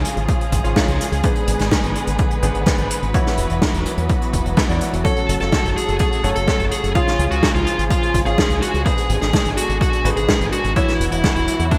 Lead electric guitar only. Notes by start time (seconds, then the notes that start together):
5.05 A4
5.41 A4
5.76 G#4
6.00 G#4
6.36 A4
6.71 G#4
6.95 F4
7.31 F#4
7.54 F4
7.90 F4
8.26 G#4
8.62 F#4
8.86 G#4
9.21 G#4
9.57 F#4
9.81 F#4
10.17 G#4
10.52 F#4
10.76 E4
11.12 E4
11.36 E4
11.71 D4